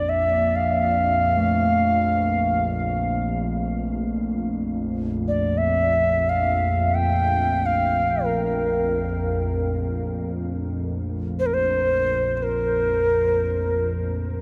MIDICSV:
0, 0, Header, 1, 4, 480
1, 0, Start_track
1, 0, Tempo, 500000
1, 13838, End_track
2, 0, Start_track
2, 0, Title_t, "Native American-style wooden flute"
2, 0, Program_c, 0, 77
2, 0, Note_on_c, 0, 74, 77
2, 86, Note_on_c, 0, 76, 82
2, 100, Note_off_c, 0, 74, 0
2, 534, Note_on_c, 0, 77, 84
2, 548, Note_off_c, 0, 76, 0
2, 3249, Note_off_c, 0, 77, 0
2, 5069, Note_on_c, 0, 74, 72
2, 5352, Note_on_c, 0, 76, 91
2, 5367, Note_off_c, 0, 74, 0
2, 6040, Note_on_c, 0, 77, 77
2, 6055, Note_off_c, 0, 76, 0
2, 6667, Note_on_c, 0, 79, 86
2, 6682, Note_off_c, 0, 77, 0
2, 7351, Note_on_c, 0, 77, 86
2, 7366, Note_off_c, 0, 79, 0
2, 7918, Note_on_c, 0, 70, 68
2, 7932, Note_off_c, 0, 77, 0
2, 9530, Note_off_c, 0, 70, 0
2, 10940, Note_on_c, 0, 72, 93
2, 11002, Note_on_c, 0, 70, 77
2, 11016, Note_off_c, 0, 72, 0
2, 11075, Note_on_c, 0, 72, 94
2, 11089, Note_off_c, 0, 70, 0
2, 11875, Note_off_c, 0, 72, 0
2, 11875, Note_on_c, 0, 72, 54
2, 11933, Note_on_c, 0, 70, 90
2, 11947, Note_off_c, 0, 72, 0
2, 13330, Note_off_c, 0, 70, 0
2, 13838, End_track
3, 0, Start_track
3, 0, Title_t, "Singing bowl"
3, 0, Program_c, 1, 14
3, 0, Note_on_c, 1, 58, 49
3, 0, Note_on_c, 1, 62, 52
3, 1318, Note_on_c, 1, 57, 51
3, 2853, Note_off_c, 1, 62, 0
3, 5725, Note_off_c, 1, 58, 0
3, 8715, Note_off_c, 1, 57, 0
3, 13838, End_track
4, 0, Start_track
4, 0, Title_t, "Ambient pad"
4, 0, Program_c, 2, 92
4, 0, Note_on_c, 2, 34, 63
4, 0, Note_on_c, 2, 41, 65
4, 13515, Note_off_c, 2, 41, 0
4, 13522, Note_off_c, 2, 34, 0
4, 13527, Note_on_c, 2, 41, 63
4, 13534, Note_on_c, 2, 34, 63
4, 13838, Note_off_c, 2, 34, 0
4, 13838, Note_off_c, 2, 41, 0
4, 13838, End_track
0, 0, End_of_file